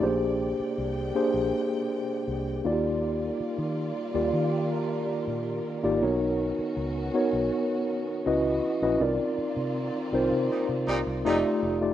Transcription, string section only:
0.00 2.63 C3 medium
0.00 2.63 G#3 medium
0.00 2.63 A#3 medium
0.00 2.61 D5 medium
0.04 2.63 G5 medium
2.65 8.22 D#3 medium
2.65 5.98 G3 medium
2.65 5.99 F4 medium
2.65 8.22 A#4 medium
2.65 5.99 D5 medium
6.02 8.98 B3 medium
6.02 8.99 C#4 medium
6.02 8.24 F#4 medium
8.26 9.00 E3 medium
8.26 9.01 F#4 medium
8.26 9.00 D#5 medium
9.01 11.94 D#3 medium
9.01 11.23 A#3 medium
9.01 11.23 C4 medium
9.01 11.23 F4 medium
9.01 11.94 D5 medium
11.26 11.94 G3 medium
11.26 11.94 A3 medium
11.26 11.94 F4 medium

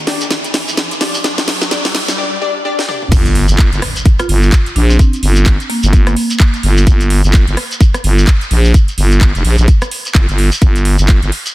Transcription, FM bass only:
3.12 3.47 G1 loud
3.49 3.70 G1 medium
3.72 3.81 G1 loud
4.29 4.51 G1 loud
4.76 4.98 A#1 loud
5.23 5.58 G1 loud
5.83 6.15 G1 loud
6.63 6.85 G1 loud
6.87 7.22 G1 loud
7.24 7.45 G1 medium
7.48 7.56 G1 loud
8.04 8.26 G1 loud
8.51 8.73 A#1 loud
8.98 9.33 G1 loud
9.35 9.43 F1 loud
9.45 9.56 A#1 loud
9.58 9.66 A#1 loud
10.15 10.26 G1 medium
10.29 10.50 G1 loud
10.62 10.97 G1 medium
10.99 11.20 G1 medium
11.22 11.31 G1 loud

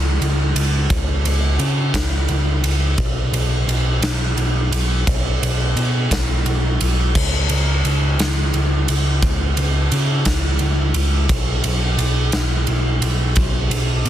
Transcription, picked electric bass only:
0.00 0.17 C#2 medium
0.21 0.52 C#2 medium
0.55 0.86 C#2 medium
0.90 1.21 C#2 loud
1.25 1.55 C#2 medium
1.59 1.90 C#3 medium
1.94 2.25 C#2 medium
2.29 2.60 C#2 medium
2.63 2.94 C#2 medium
2.98 3.29 B1 medium
3.33 3.63 B1 medium
3.67 3.98 B1 medium
4.01 4.32 B1 medium
4.37 4.68 B1 loud
4.71 5.02 B1 medium
5.07 5.37 B1 medium
5.42 5.72 B1 medium
5.76 6.06 B2 medium
6.11 6.41 B1 medium
6.45 6.76 B1 medium
6.81 7.11 B1 medium
7.15 7.45 C#2 medium
7.50 7.80 C#2 medium
7.85 8.15 C#2 medium
8.19 8.49 C#2 medium
8.54 8.84 C#2 medium
8.89 9.19 C#2 medium
9.23 9.53 C#2 loud
9.57 9.88 C#2 medium
9.92 10.22 C#3 medium
10.25 10.56 C#2 medium
10.60 10.91 C#2 loud
10.94 11.25 C#2 loud
11.29 11.60 B1 loud
11.64 11.95 B1 medium
11.98 12.29 B1 medium
12.33 12.64 B1 medium
12.68 12.99 B1 medium
13.01 13.32 B1 medium
13.37 13.68 B1 loud
13.70 14.01 B1 medium
14.05 14.09 B2 medium

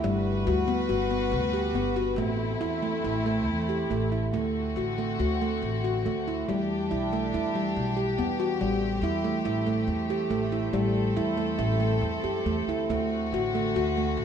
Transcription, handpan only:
0.04 0.35 G3 medium
0.47 0.62 F#4 medium
0.68 0.83 B3 medium
0.89 1.05 F#4 medium
1.11 1.41 B3 medium
1.53 1.69 G4 medium
1.75 1.90 B3 medium
1.96 2.12 F#4 medium
2.18 2.49 A3 medium
2.61 2.76 E4 medium
2.82 2.98 A3 medium
3.04 3.20 E4 medium
3.26 3.57 A3 medium
3.69 3.84 G4 medium
3.91 4.06 A3 medium
4.12 4.27 E4 medium
4.34 4.65 A3 medium
4.77 4.93 F#4 medium
4.98 5.14 A3 medium
5.20 5.35 F#4 medium
5.41 5.72 A3 medium
5.84 6.00 F#4 medium
6.06 6.21 A3 medium
6.28 6.43 E4 medium
6.49 6.79 G3 medium
6.91 7.06 E4 medium
7.13 7.28 A3 medium
7.34 7.50 E4 medium
7.55 7.86 G3 medium
7.97 8.12 G4 medium
8.18 8.34 B3 medium
8.40 8.55 F#4 medium
8.61 8.91 G3 medium
9.04 9.19 E4 medium
9.24 9.40 A3 medium
9.45 9.61 E4 medium
9.67 9.98 A3 medium
10.10 10.25 G4 medium
10.31 10.46 A3 medium
10.52 10.68 E4 medium
10.73 11.04 G3 medium
11.17 11.32 E4 medium
11.37 11.53 A3 medium
11.59 11.74 E4 medium
11.80 12.11 A3 medium
12.24 12.39 G4 medium
12.46 12.62 A3 medium
12.69 12.84 E4 medium
12.90 13.21 A3 medium
13.34 13.49 F#4 medium
13.55 13.70 A3 medium
13.76 13.91 F#4 medium
13.97 14.25 A3 medium

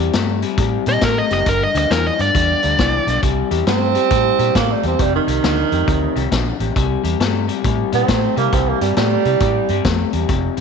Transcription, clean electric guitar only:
0.00 0.12 C3 medium
0.00 0.13 G3 medium
0.14 0.40 C3 medium
0.14 0.40 A3 medium
0.42 0.56 C3 medium
0.42 0.57 G3 medium
0.59 0.84 C3 medium
0.59 0.84 G3 medium
0.87 1.01 C3 medium
0.87 1.01 G3 medium
1.03 1.28 C3 medium
1.03 1.28 A3 medium
1.30 1.45 C3 medium
1.30 1.45 G3 medium
1.47 1.72 G2 medium
1.47 1.72 D3 medium
1.74 1.89 G2 medium
1.74 1.89 D3 medium
1.90 2.16 G2 medium
1.90 2.16 E3 medium
2.18 2.33 G2 medium
2.18 2.33 D3 medium
2.34 2.60 G2 medium
2.34 2.60 D3 medium
2.63 2.77 G2 medium
2.63 2.77 D3 medium
2.79 3.04 G2 medium
2.79 3.04 E3 medium
3.07 3.21 G2 medium
3.07 3.22 D3 medium
3.23 3.48 C3 medium
3.23 3.49 G3 medium
3.51 3.65 C3 medium
3.51 3.65 G3 medium
3.67 3.92 C3 medium
3.67 3.92 A3 medium
3.95 4.09 C3 medium
3.95 4.09 G3 medium
4.11 4.36 C3 medium
4.11 4.37 G3 medium
4.39 4.53 C3 medium
4.39 4.54 G3 medium
4.55 4.81 C3 medium
4.55 4.81 A3 medium
4.83 4.98 C3 medium
4.83 4.98 G3 medium
4.99 5.25 F2 medium
4.99 5.25 C3 medium
5.27 5.42 F2 medium
5.27 5.42 C3 medium
5.43 5.69 F2 medium
5.43 5.69 D3 medium
5.72 5.86 F2 medium
5.72 5.86 C3 medium
5.87 6.13 F2 medium
5.87 6.13 C3 medium
6.16 6.30 F2 medium
6.16 6.30 C3 medium
6.31 6.57 F2 medium
6.31 6.57 D3 medium
6.60 6.74 F2 medium
6.60 6.74 C3 medium
6.76 7.01 C3 medium
6.76 7.02 G3 medium
7.04 7.18 C3 medium
7.04 7.18 G3 medium
7.20 7.46 C3 medium
7.20 7.46 A3 medium
7.48 7.62 C3 medium
7.48 7.63 G3 medium
7.65 7.90 C3 medium
7.65 7.90 G3 medium
7.92 8.07 C3 medium
7.92 8.07 G3 medium
8.08 8.34 C3 medium
8.08 8.34 A3 medium
8.36 8.51 C3 medium
8.36 8.51 G3 medium
8.52 8.78 C3 medium
8.52 8.78 G3 medium
8.81 8.95 C3 medium
8.81 8.96 G3 medium
8.97 9.22 C3 medium
8.97 9.22 A3 medium
9.26 9.40 C3 medium
9.26 9.40 G3 medium
9.41 9.66 C3 medium
9.41 9.67 G3 loud
9.70 9.84 C3 medium
9.70 9.84 G3 medium
9.85 10.10 C3 medium
9.85 10.11 A3 medium
10.13 10.27 C3 medium
10.13 10.28 G3 medium
10.29 10.54 F2 medium
10.29 10.55 C3 medium
10.57 10.60 F2 medium
10.57 10.60 C3 medium

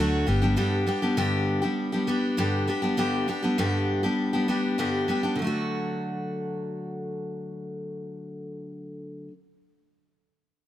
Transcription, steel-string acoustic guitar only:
0.00 0.28 D3 medium
0.00 0.26 F#3 medium
0.00 0.27 A3 medium
0.00 0.27 D4 medium
0.00 0.28 F#4 medium
0.27 0.42 G3 medium
0.27 0.42 B3 medium
0.27 0.41 D4 medium
0.27 0.41 G4 medium
0.42 0.56 G3 soft
0.42 0.56 B3 soft
0.42 0.56 D4 soft
0.42 0.56 G4 soft
0.56 0.87 G2 medium
0.56 0.87 D3 medium
0.56 0.85 G3 medium
0.56 0.86 B3 medium
0.56 0.87 D4 medium
0.56 0.87 G4 medium
0.87 1.02 G3 medium
0.87 1.02 B3 medium
0.87 1.02 D4 medium
0.87 1.01 G4 medium
1.02 1.16 G3 soft
1.02 1.17 B3 soft
1.02 1.17 D4 medium
1.02 1.17 G4 soft
1.17 1.62 G2 medium
1.17 1.62 D3 medium
1.17 1.63 G3 medium
1.17 1.62 B3 medium
1.17 1.62 D4 medium
1.17 1.60 G4 medium
1.62 1.93 G3 soft
1.62 1.93 B3 soft
1.62 1.92 D4 soft
1.62 1.91 G4 medium
1.92 2.06 G3 soft
1.92 2.07 B3 soft
1.92 2.07 D4 soft
1.92 2.08 G4 medium
2.07 2.37 G3 medium
2.07 2.37 B3 medium
2.07 2.37 D4 medium
2.07 2.38 G4 medium
2.37 2.68 G2 medium
2.37 2.68 D3 medium
2.37 2.66 G3 medium
2.37 2.67 B3 medium
2.37 2.68 D4 medium
2.37 2.68 G4 medium
2.67 2.83 G3 medium
2.67 2.82 B3 medium
2.67 2.82 D4 medium
2.67 2.81 G4 medium
2.82 2.97 G3 soft
2.82 2.97 B3 soft
2.82 2.98 D4 soft
2.82 2.97 G4 medium
2.97 3.28 G2 medium
2.97 3.28 D3 medium
2.97 3.26 G3 medium
2.97 3.27 B3 medium
2.97 3.27 D4 medium
2.97 3.28 G4 medium
3.28 3.43 G3 soft
3.28 3.43 B3 medium
3.28 3.42 D4 medium
3.28 3.41 G4 medium
3.43 3.57 G3 soft
3.43 3.58 B3 soft
3.43 3.58 D4 soft
3.43 3.58 G4 soft
3.58 4.03 G2 medium
3.58 4.03 D3 medium
3.58 4.03 G3 medium
3.58 4.03 B3 medium
3.58 4.03 D4 medium
3.58 4.02 G4 medium
4.03 4.34 G3 soft
4.03 4.33 B3 soft
4.03 4.32 D4 soft
4.03 4.32 G4 soft
4.33 4.47 G3 soft
4.33 4.47 B3 soft
4.33 4.48 D4 soft
4.33 4.48 G4 medium
4.48 4.78 G3 medium
4.48 4.78 B3 medium
4.48 4.78 D4 medium
4.48 4.79 G4 medium
4.78 5.08 G2 medium
4.78 5.09 D3 medium
4.78 5.07 G3 medium
4.78 5.08 B3 medium
4.78 5.08 D4 medium
4.78 5.09 G4 medium
5.08 5.23 G3 medium
5.08 5.23 B3 medium
5.08 5.23 D4 medium
5.08 5.22 G4 medium
5.23 5.38 G3 soft
5.23 5.39 B3 soft
5.23 5.39 D4 soft
5.23 5.38 G4 soft
5.36 9.28 D3 medium
5.36 9.29 F#3 medium
5.42 9.31 A3 medium
5.42 9.32 D4 medium
5.47 9.33 F#4 medium

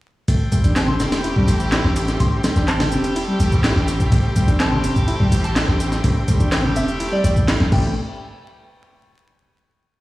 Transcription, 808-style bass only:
0.28 0.37 A1 loud
0.64 1.01 A1 loud
1.00 1.31 E1 loud
1.48 1.79 A1 loud
1.84 2.15 A1 loud
2.20 2.29 A1 loud
2.56 2.93 A1 loud
2.92 3.23 E1 loud
3.40 3.71 A1 loud
3.76 4.07 A1 loud
4.12 4.21 A1 loud
4.48 4.85 A1 loud
4.84 5.15 E1 loud
5.32 5.63 A1 loud
5.68 5.99 A1 loud
6.04 6.13 A1 loud
6.40 6.77 A1 loud
6.76 7.07 E1 loud
7.24 7.55 A1 medium
7.60 7.71 A1 loud
7.72 7.94 A1 loud

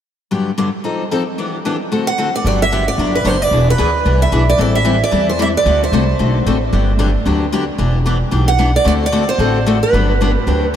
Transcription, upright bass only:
2.44 2.87 G1 medium
2.98 3.21 G1 medium
3.25 3.47 F#1 medium
3.51 3.73 E1 medium
3.79 4.01 D2 medium
4.05 4.28 C2 medium
4.32 4.55 B1 medium
4.59 5.01 A1 medium
5.12 5.55 E2 medium
5.65 5.87 D2 medium
5.92 6.15 C2 medium
6.19 6.42 B1 medium
6.46 6.69 A1 medium
6.73 7.15 G1 medium
7.26 7.68 D2 medium
7.79 8.21 E1 medium
8.32 8.75 B1 medium
8.85 9.28 D2 medium
9.38 9.81 A1 medium
9.93 10.35 G1 medium
10.47 10.76 D2 medium

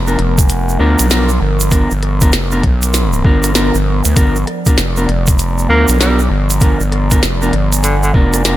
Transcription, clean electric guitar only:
0.07 0.19 B3 medium
0.07 0.19 D4 medium
0.07 0.19 F4 medium
0.07 0.19 A#4 medium
0.79 1.08 B3 loud
0.79 1.07 D4 medium
0.79 1.07 F4 medium
0.79 1.07 A#4 loud
1.10 1.30 B3 loud
1.10 1.30 D4 medium
1.10 1.30 F4 medium
1.10 1.30 A#4 loud
1.71 1.91 B3 medium
1.71 1.91 D4 medium
1.71 1.91 F4 medium
1.71 1.91 A#4 loud
2.22 2.33 B3 medium
2.22 2.33 D4 medium
2.22 2.33 F4 medium
2.22 2.33 A#4 loud
2.52 2.63 B3 medium
2.52 2.63 D4 medium
2.52 2.63 F4 medium
2.52 2.63 A#4 medium
3.25 3.53 B3 loud
3.25 3.53 D4 medium
3.25 3.53 F4 medium
3.25 3.53 A#4 loud
3.55 3.75 B3 loud
3.55 3.75 D4 medium
3.55 3.75 F4 medium
3.55 3.75 A#4 loud
4.16 4.36 B3 loud
4.16 4.36 D4 medium
4.16 4.36 F4 medium
4.16 4.36 A#4 loud
4.67 4.78 B3 medium
4.67 4.78 D4 medium
4.67 4.78 F4 medium
4.67 4.78 A#4 loud
4.97 5.09 B3 medium
4.97 5.09 D4 medium
4.97 5.08 F4 medium
4.97 5.09 A#4 medium
5.70 5.98 B3 loud
5.70 5.98 D4 medium
5.70 5.98 F4 medium
5.70 5.98 A#4 loud
6.00 6.20 B3 loud
6.00 6.20 D4 medium
6.00 6.20 F4 medium
6.00 6.20 A#4 loud
6.61 6.81 B3 loud
6.61 6.81 D4 medium
6.61 6.81 F4 medium
6.61 6.81 A#4 loud
7.11 7.23 B3 medium
7.11 7.23 D4 medium
7.11 7.23 F4 medium
7.11 7.23 A#4 loud
7.42 7.53 B3 medium
7.42 7.53 D4 medium
7.42 7.53 F4 medium
7.42 7.53 A#4 medium
8.14 8.42 B3 loud
8.14 8.42 D4 medium
8.14 8.42 F4 loud
8.14 8.42 A#4 loud
8.45 8.57 B3 loud
8.45 8.57 D4 medium
8.45 8.57 F4 medium
8.45 8.57 A#4 loud

